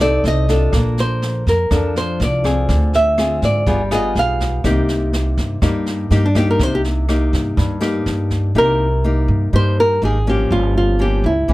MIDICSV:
0, 0, Header, 1, 5, 480
1, 0, Start_track
1, 0, Key_signature, -3, "minor"
1, 0, Tempo, 488998
1, 715, Time_signature, 4, 2, 24, 8
1, 11322, End_track
2, 0, Start_track
2, 0, Title_t, "Nylon-string guitar"
2, 0, Program_c, 0, 24
2, 13, Note_on_c, 0, 74, 90
2, 237, Note_off_c, 0, 74, 0
2, 271, Note_on_c, 0, 75, 102
2, 701, Note_off_c, 0, 75, 0
2, 984, Note_on_c, 0, 72, 77
2, 1417, Note_off_c, 0, 72, 0
2, 1462, Note_on_c, 0, 70, 77
2, 1896, Note_off_c, 0, 70, 0
2, 1940, Note_on_c, 0, 72, 84
2, 2160, Note_off_c, 0, 72, 0
2, 2192, Note_on_c, 0, 74, 79
2, 2621, Note_off_c, 0, 74, 0
2, 2900, Note_on_c, 0, 76, 97
2, 3335, Note_off_c, 0, 76, 0
2, 3385, Note_on_c, 0, 74, 77
2, 3817, Note_off_c, 0, 74, 0
2, 3870, Note_on_c, 0, 75, 82
2, 4085, Note_off_c, 0, 75, 0
2, 4114, Note_on_c, 0, 77, 85
2, 4542, Note_off_c, 0, 77, 0
2, 6140, Note_on_c, 0, 62, 74
2, 6243, Note_off_c, 0, 62, 0
2, 6263, Note_on_c, 0, 67, 86
2, 6365, Note_off_c, 0, 67, 0
2, 6386, Note_on_c, 0, 70, 78
2, 6509, Note_off_c, 0, 70, 0
2, 6509, Note_on_c, 0, 72, 94
2, 6607, Note_off_c, 0, 72, 0
2, 6624, Note_on_c, 0, 67, 80
2, 6687, Note_off_c, 0, 67, 0
2, 8425, Note_on_c, 0, 70, 97
2, 9376, Note_off_c, 0, 70, 0
2, 9380, Note_on_c, 0, 72, 98
2, 9614, Note_off_c, 0, 72, 0
2, 9620, Note_on_c, 0, 70, 94
2, 9831, Note_off_c, 0, 70, 0
2, 9865, Note_on_c, 0, 68, 91
2, 10096, Note_off_c, 0, 68, 0
2, 10106, Note_on_c, 0, 67, 82
2, 10326, Note_on_c, 0, 65, 93
2, 10337, Note_off_c, 0, 67, 0
2, 10565, Note_off_c, 0, 65, 0
2, 10577, Note_on_c, 0, 65, 78
2, 10813, Note_off_c, 0, 65, 0
2, 10813, Note_on_c, 0, 67, 78
2, 11051, Note_off_c, 0, 67, 0
2, 11052, Note_on_c, 0, 64, 61
2, 11322, Note_off_c, 0, 64, 0
2, 11322, End_track
3, 0, Start_track
3, 0, Title_t, "Nylon-string guitar"
3, 0, Program_c, 1, 24
3, 0, Note_on_c, 1, 48, 55
3, 6, Note_on_c, 1, 60, 64
3, 13, Note_on_c, 1, 63, 57
3, 17, Note_on_c, 1, 69, 67
3, 442, Note_off_c, 1, 60, 0
3, 445, Note_off_c, 1, 63, 0
3, 448, Note_off_c, 1, 69, 0
3, 479, Note_on_c, 1, 62, 56
3, 484, Note_on_c, 1, 65, 52
3, 487, Note_on_c, 1, 69, 59
3, 692, Note_off_c, 1, 48, 0
3, 716, Note_on_c, 1, 58, 58
3, 1399, Note_off_c, 1, 62, 0
3, 1400, Note_off_c, 1, 65, 0
3, 1403, Note_off_c, 1, 69, 0
3, 1652, Note_off_c, 1, 58, 0
3, 1677, Note_on_c, 1, 53, 58
3, 1683, Note_on_c, 1, 62, 52
3, 1684, Note_on_c, 1, 65, 54
3, 1687, Note_on_c, 1, 69, 59
3, 2359, Note_off_c, 1, 62, 0
3, 2362, Note_off_c, 1, 65, 0
3, 2362, Note_off_c, 1, 69, 0
3, 2395, Note_on_c, 1, 60, 54
3, 2401, Note_on_c, 1, 65, 58
3, 2406, Note_on_c, 1, 68, 57
3, 2612, Note_off_c, 1, 53, 0
3, 2637, Note_on_c, 1, 50, 57
3, 3077, Note_off_c, 1, 60, 0
3, 3079, Note_off_c, 1, 65, 0
3, 3082, Note_off_c, 1, 68, 0
3, 3119, Note_on_c, 1, 60, 57
3, 3123, Note_on_c, 1, 65, 52
3, 3127, Note_on_c, 1, 68, 60
3, 3572, Note_off_c, 1, 50, 0
3, 3577, Note_off_c, 1, 60, 0
3, 3580, Note_off_c, 1, 65, 0
3, 3582, Note_off_c, 1, 68, 0
3, 3601, Note_on_c, 1, 55, 53
3, 3601, Note_on_c, 1, 59, 53
3, 3603, Note_on_c, 1, 65, 54
3, 3608, Note_on_c, 1, 68, 59
3, 3738, Note_off_c, 1, 59, 0
3, 3740, Note_off_c, 1, 65, 0
3, 3743, Note_off_c, 1, 68, 0
3, 3840, Note_on_c, 1, 59, 60
3, 3846, Note_on_c, 1, 65, 65
3, 3847, Note_on_c, 1, 68, 74
3, 4518, Note_off_c, 1, 59, 0
3, 4520, Note_off_c, 1, 65, 0
3, 4522, Note_off_c, 1, 68, 0
3, 4533, Note_off_c, 1, 55, 0
3, 4557, Note_on_c, 1, 48, 59
3, 4561, Note_on_c, 1, 58, 66
3, 4566, Note_on_c, 1, 67, 65
3, 4568, Note_on_c, 1, 63, 57
3, 5477, Note_off_c, 1, 58, 0
3, 5479, Note_off_c, 1, 63, 0
3, 5481, Note_off_c, 1, 67, 0
3, 5491, Note_off_c, 1, 48, 0
3, 5516, Note_on_c, 1, 43, 57
3, 5520, Note_on_c, 1, 58, 54
3, 5522, Note_on_c, 1, 63, 60
3, 5526, Note_on_c, 1, 67, 60
3, 5958, Note_off_c, 1, 58, 0
3, 5958, Note_off_c, 1, 63, 0
3, 5960, Note_off_c, 1, 67, 0
3, 5997, Note_on_c, 1, 58, 62
3, 6001, Note_on_c, 1, 63, 62
3, 6006, Note_on_c, 1, 67, 70
3, 6136, Note_off_c, 1, 58, 0
3, 6137, Note_off_c, 1, 63, 0
3, 6140, Note_off_c, 1, 67, 0
3, 6236, Note_on_c, 1, 58, 61
3, 6242, Note_on_c, 1, 63, 58
3, 6244, Note_on_c, 1, 67, 66
3, 6450, Note_off_c, 1, 43, 0
3, 6481, Note_on_c, 1, 48, 53
3, 6916, Note_off_c, 1, 58, 0
3, 6917, Note_off_c, 1, 63, 0
3, 6919, Note_off_c, 1, 67, 0
3, 6955, Note_on_c, 1, 58, 55
3, 6962, Note_on_c, 1, 63, 53
3, 6967, Note_on_c, 1, 67, 53
3, 7412, Note_off_c, 1, 48, 0
3, 7432, Note_on_c, 1, 43, 56
3, 7635, Note_off_c, 1, 58, 0
3, 7638, Note_off_c, 1, 63, 0
3, 7641, Note_off_c, 1, 67, 0
3, 7662, Note_on_c, 1, 58, 67
3, 7666, Note_on_c, 1, 63, 68
3, 7672, Note_on_c, 1, 67, 68
3, 8349, Note_off_c, 1, 58, 0
3, 8351, Note_off_c, 1, 63, 0
3, 8354, Note_off_c, 1, 67, 0
3, 8368, Note_off_c, 1, 43, 0
3, 8394, Note_on_c, 1, 48, 54
3, 8398, Note_on_c, 1, 58, 58
3, 8400, Note_on_c, 1, 63, 58
3, 8405, Note_on_c, 1, 67, 58
3, 8703, Note_off_c, 1, 58, 0
3, 8705, Note_off_c, 1, 63, 0
3, 8708, Note_off_c, 1, 67, 0
3, 8876, Note_on_c, 1, 58, 51
3, 8881, Note_on_c, 1, 63, 49
3, 8889, Note_on_c, 1, 67, 55
3, 9317, Note_off_c, 1, 58, 0
3, 9318, Note_off_c, 1, 63, 0
3, 9323, Note_off_c, 1, 67, 0
3, 9330, Note_off_c, 1, 48, 0
3, 9353, Note_on_c, 1, 43, 48
3, 9357, Note_on_c, 1, 58, 51
3, 9357, Note_on_c, 1, 63, 52
3, 9362, Note_on_c, 1, 67, 61
3, 9796, Note_off_c, 1, 58, 0
3, 9797, Note_off_c, 1, 63, 0
3, 9798, Note_off_c, 1, 67, 0
3, 9840, Note_on_c, 1, 58, 54
3, 9846, Note_on_c, 1, 63, 54
3, 9849, Note_on_c, 1, 67, 56
3, 9978, Note_off_c, 1, 58, 0
3, 9981, Note_off_c, 1, 63, 0
3, 9982, Note_off_c, 1, 67, 0
3, 10082, Note_on_c, 1, 53, 54
3, 10084, Note_on_c, 1, 58, 56
3, 10088, Note_on_c, 1, 61, 61
3, 10291, Note_off_c, 1, 43, 0
3, 10319, Note_on_c, 1, 43, 58
3, 10761, Note_off_c, 1, 53, 0
3, 10761, Note_off_c, 1, 58, 0
3, 10763, Note_off_c, 1, 61, 0
3, 10788, Note_on_c, 1, 53, 51
3, 10792, Note_on_c, 1, 58, 44
3, 10795, Note_on_c, 1, 61, 55
3, 11115, Note_off_c, 1, 53, 0
3, 11116, Note_off_c, 1, 58, 0
3, 11118, Note_off_c, 1, 61, 0
3, 11255, Note_off_c, 1, 43, 0
3, 11270, Note_on_c, 1, 48, 53
3, 11274, Note_on_c, 1, 52, 54
3, 11276, Note_on_c, 1, 58, 47
3, 11283, Note_on_c, 1, 61, 55
3, 11322, Note_off_c, 1, 48, 0
3, 11322, Note_off_c, 1, 52, 0
3, 11322, Note_off_c, 1, 58, 0
3, 11322, Note_off_c, 1, 61, 0
3, 11322, End_track
4, 0, Start_track
4, 0, Title_t, "Upright bass"
4, 0, Program_c, 2, 32
4, 0, Note_on_c, 2, 36, 80
4, 202, Note_off_c, 2, 36, 0
4, 235, Note_on_c, 2, 36, 91
4, 681, Note_off_c, 2, 36, 0
4, 716, Note_on_c, 2, 34, 87
4, 1397, Note_off_c, 2, 34, 0
4, 1440, Note_on_c, 2, 41, 85
4, 1661, Note_off_c, 2, 41, 0
4, 1680, Note_on_c, 2, 41, 77
4, 2124, Note_off_c, 2, 41, 0
4, 2158, Note_on_c, 2, 36, 93
4, 2603, Note_off_c, 2, 36, 0
4, 2641, Note_on_c, 2, 38, 93
4, 3318, Note_off_c, 2, 38, 0
4, 3360, Note_on_c, 2, 44, 84
4, 3581, Note_off_c, 2, 44, 0
4, 3600, Note_on_c, 2, 31, 86
4, 4044, Note_off_c, 2, 31, 0
4, 4078, Note_on_c, 2, 35, 87
4, 4522, Note_off_c, 2, 35, 0
4, 4558, Note_on_c, 2, 36, 90
4, 5236, Note_off_c, 2, 36, 0
4, 5277, Note_on_c, 2, 43, 91
4, 5498, Note_off_c, 2, 43, 0
4, 5516, Note_on_c, 2, 43, 87
4, 5961, Note_off_c, 2, 43, 0
4, 5994, Note_on_c, 2, 43, 94
4, 6439, Note_off_c, 2, 43, 0
4, 6474, Note_on_c, 2, 36, 94
4, 7154, Note_off_c, 2, 36, 0
4, 7196, Note_on_c, 2, 43, 93
4, 7417, Note_off_c, 2, 43, 0
4, 7434, Note_on_c, 2, 43, 87
4, 7879, Note_off_c, 2, 43, 0
4, 7913, Note_on_c, 2, 43, 92
4, 8359, Note_off_c, 2, 43, 0
4, 8392, Note_on_c, 2, 36, 90
4, 9073, Note_off_c, 2, 36, 0
4, 9112, Note_on_c, 2, 43, 88
4, 9336, Note_off_c, 2, 43, 0
4, 9355, Note_on_c, 2, 43, 85
4, 9801, Note_off_c, 2, 43, 0
4, 9834, Note_on_c, 2, 32, 93
4, 10281, Note_off_c, 2, 32, 0
4, 10313, Note_on_c, 2, 31, 92
4, 10996, Note_off_c, 2, 31, 0
4, 11031, Note_on_c, 2, 37, 92
4, 11257, Note_off_c, 2, 37, 0
4, 11272, Note_on_c, 2, 36, 80
4, 11322, Note_off_c, 2, 36, 0
4, 11322, End_track
5, 0, Start_track
5, 0, Title_t, "Drums"
5, 0, Note_on_c, 9, 37, 56
5, 94, Note_off_c, 9, 37, 0
5, 240, Note_on_c, 9, 38, 24
5, 339, Note_off_c, 9, 38, 0
5, 477, Note_on_c, 9, 36, 23
5, 478, Note_on_c, 9, 38, 22
5, 576, Note_off_c, 9, 36, 0
5, 576, Note_off_c, 9, 38, 0
5, 713, Note_on_c, 9, 37, 65
5, 713, Note_on_c, 9, 38, 25
5, 716, Note_on_c, 9, 36, 61
5, 811, Note_off_c, 9, 37, 0
5, 811, Note_off_c, 9, 38, 0
5, 815, Note_off_c, 9, 36, 0
5, 958, Note_on_c, 9, 38, 25
5, 1056, Note_off_c, 9, 38, 0
5, 1199, Note_on_c, 9, 38, 25
5, 1297, Note_off_c, 9, 38, 0
5, 1440, Note_on_c, 9, 36, 23
5, 1443, Note_on_c, 9, 38, 23
5, 1538, Note_off_c, 9, 36, 0
5, 1541, Note_off_c, 9, 38, 0
5, 1677, Note_on_c, 9, 37, 63
5, 1677, Note_on_c, 9, 38, 23
5, 1679, Note_on_c, 9, 36, 62
5, 1775, Note_off_c, 9, 37, 0
5, 1775, Note_off_c, 9, 38, 0
5, 1777, Note_off_c, 9, 36, 0
5, 1924, Note_on_c, 9, 38, 22
5, 2022, Note_off_c, 9, 38, 0
5, 2165, Note_on_c, 9, 38, 27
5, 2263, Note_off_c, 9, 38, 0
5, 2401, Note_on_c, 9, 36, 22
5, 2406, Note_on_c, 9, 37, 60
5, 2406, Note_on_c, 9, 38, 22
5, 2499, Note_off_c, 9, 36, 0
5, 2504, Note_off_c, 9, 37, 0
5, 2504, Note_off_c, 9, 38, 0
5, 2640, Note_on_c, 9, 36, 66
5, 2640, Note_on_c, 9, 38, 28
5, 2738, Note_off_c, 9, 36, 0
5, 2738, Note_off_c, 9, 38, 0
5, 2879, Note_on_c, 9, 38, 22
5, 2977, Note_off_c, 9, 38, 0
5, 3122, Note_on_c, 9, 37, 60
5, 3122, Note_on_c, 9, 38, 23
5, 3220, Note_off_c, 9, 37, 0
5, 3220, Note_off_c, 9, 38, 0
5, 3358, Note_on_c, 9, 36, 22
5, 3358, Note_on_c, 9, 38, 22
5, 3456, Note_off_c, 9, 36, 0
5, 3456, Note_off_c, 9, 38, 0
5, 3598, Note_on_c, 9, 36, 59
5, 3599, Note_on_c, 9, 38, 26
5, 3696, Note_off_c, 9, 36, 0
5, 3697, Note_off_c, 9, 38, 0
5, 3839, Note_on_c, 9, 37, 58
5, 3839, Note_on_c, 9, 38, 23
5, 3938, Note_off_c, 9, 37, 0
5, 3938, Note_off_c, 9, 38, 0
5, 4080, Note_on_c, 9, 38, 23
5, 4178, Note_off_c, 9, 38, 0
5, 4318, Note_on_c, 9, 36, 24
5, 4323, Note_on_c, 9, 38, 24
5, 4416, Note_off_c, 9, 36, 0
5, 4421, Note_off_c, 9, 38, 0
5, 4557, Note_on_c, 9, 36, 64
5, 4557, Note_on_c, 9, 37, 61
5, 4557, Note_on_c, 9, 38, 26
5, 4655, Note_off_c, 9, 37, 0
5, 4655, Note_off_c, 9, 38, 0
5, 4656, Note_off_c, 9, 36, 0
5, 4796, Note_on_c, 9, 38, 24
5, 4894, Note_off_c, 9, 38, 0
5, 5036, Note_on_c, 9, 38, 24
5, 5134, Note_off_c, 9, 38, 0
5, 5277, Note_on_c, 9, 36, 20
5, 5277, Note_on_c, 9, 38, 23
5, 5375, Note_off_c, 9, 36, 0
5, 5375, Note_off_c, 9, 38, 0
5, 5516, Note_on_c, 9, 36, 60
5, 5516, Note_on_c, 9, 37, 59
5, 5516, Note_on_c, 9, 38, 22
5, 5614, Note_off_c, 9, 36, 0
5, 5614, Note_off_c, 9, 37, 0
5, 5614, Note_off_c, 9, 38, 0
5, 5755, Note_on_c, 9, 38, 23
5, 5853, Note_off_c, 9, 38, 0
5, 5996, Note_on_c, 9, 38, 23
5, 6094, Note_off_c, 9, 38, 0
5, 6233, Note_on_c, 9, 37, 61
5, 6233, Note_on_c, 9, 38, 23
5, 6234, Note_on_c, 9, 36, 23
5, 6331, Note_off_c, 9, 37, 0
5, 6331, Note_off_c, 9, 38, 0
5, 6332, Note_off_c, 9, 36, 0
5, 6474, Note_on_c, 9, 36, 68
5, 6475, Note_on_c, 9, 38, 27
5, 6572, Note_off_c, 9, 36, 0
5, 6573, Note_off_c, 9, 38, 0
5, 6716, Note_on_c, 9, 38, 22
5, 6815, Note_off_c, 9, 38, 0
5, 6956, Note_on_c, 9, 37, 65
5, 6956, Note_on_c, 9, 38, 23
5, 7054, Note_off_c, 9, 37, 0
5, 7054, Note_off_c, 9, 38, 0
5, 7194, Note_on_c, 9, 36, 22
5, 7197, Note_on_c, 9, 38, 23
5, 7292, Note_off_c, 9, 36, 0
5, 7295, Note_off_c, 9, 38, 0
5, 7434, Note_on_c, 9, 36, 64
5, 7437, Note_on_c, 9, 38, 24
5, 7532, Note_off_c, 9, 36, 0
5, 7536, Note_off_c, 9, 38, 0
5, 7675, Note_on_c, 9, 37, 59
5, 7675, Note_on_c, 9, 38, 24
5, 7773, Note_off_c, 9, 37, 0
5, 7773, Note_off_c, 9, 38, 0
5, 7914, Note_on_c, 9, 38, 24
5, 8012, Note_off_c, 9, 38, 0
5, 8152, Note_on_c, 9, 38, 23
5, 8153, Note_on_c, 9, 36, 24
5, 8250, Note_off_c, 9, 38, 0
5, 8251, Note_off_c, 9, 36, 0
5, 11322, End_track
0, 0, End_of_file